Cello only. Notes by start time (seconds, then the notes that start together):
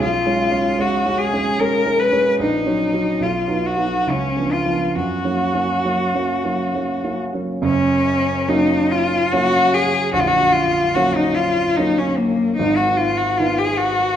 0.02 F4
0.81 F#4
1.18 G#4
1.59 A#4
1.99 B4
2.41 D#4
3.22 F4
3.66 F#4
4.10 C#4
4.52 F4
4.95 F#4
7.65 C#4
8.49 D#4
8.91 F4
9.33 F#4
9.74 G#4
10.13 F#4
10.20 F4
10.27 F#4
10.53 F4
10.94 F#4
11.16 D#4
11.35 F4
11.76 D#4
11.98 C#4
12.17 A#3
12.56 D#4
12.77 F#4
12.97 F4
13.17 F#4
13.38 F4
13.58 G#4
13.77 F#4